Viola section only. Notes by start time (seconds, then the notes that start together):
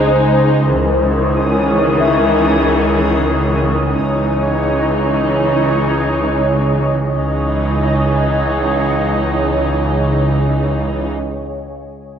Already playing: G#3 D#4
0.71 D#3 E3
3.93 E3 D#4
7.15 E3 D#4